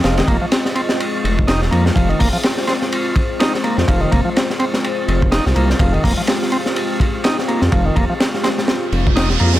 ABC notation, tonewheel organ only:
X:1
M:4/4
L:1/16
Q:"Swing 16ths" 1/4=125
K:Fm
V:1 name="Tonewheel organ"
F, E, B, F, z2 C z4 z E z B, z | F, E, B, F, z2 C z4 z E z B, z | F, E, B, F, z2 C z4 z E z B, z | F, E, B, F, z2 C z4 z E z B, z |
F, E, B, F, z2 C z4 z E z B, z |]